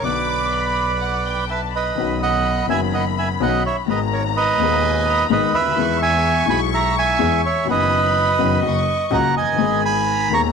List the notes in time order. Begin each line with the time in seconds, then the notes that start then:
0.02 B1 B2 D3 F#3 B3 B4 D5 D6
0.06 F#4
0.51 B5
1.00 F#5
1.24 G5
1.49 B4 E5 A5
1.72 B4 D#5 B5
1.95 B1 B2 D#3 B3 C#4 B5
2.00 F#4
2.23 D#5 F#5
2.67 F#1 F#2 D#3 B3 C#4 E5 G#5
2.71 F#4
2.94 D#5 F#5
3.18 E5 G#5
3.40 B1 B2 D#3 B3 C#4 F#4 D#5 F#5
3.66 C#5 E5
3.86 G#1 G#2 D#3 G#3 B3 B4 A#5
3.90 G#4 D#5
4.13 A#4 C#5
4.37 B4 D#5
4.58 D#1 D#2 D#3 G#3 B3
4.62 G#4
4.82 G#5
5.06 A#5
5.29 G#1 G#2 D#3 G#3 B3 G#4 B4 D#5 B5
5.54 D2 B4 E5
5.61 C#2
5.65 D2
5.71 D#2
5.76 E2 E3 G#3 B3 G#4 C#6
6.02 E5 G#5
6.46 B1 B2 E3 G#3 B3 G#4 G#5
6.50 B5
6.74 E5 A#5
6.98 E5 G#5
7.19 E2 E3 G#3 B3 G#4
7.46 C#5 E5
7.64 F#1 F#2 D#3 F#3 B3 B5
7.69 F#4 B4 D#5
8.38 F#1 F#2 D#3 F#3 B3 F#4
8.62 F#1 F#2 C#3 F#3 A#3 F#4 C#6
9.11 C#2 C#3 F#3 A#3 F#4 F#5 A#5
9.36 F#1 D#5 G#5
9.41 F1
9.47 F#1
9.54 G1 D#3
9.58 G#1 G#2 G#3 B3 G#4 B5
9.85 G#5 B5
10.07 A#5
10.29 D#1 D#2 D#3 G#3 B3
10.33 G#4 A#5 C#6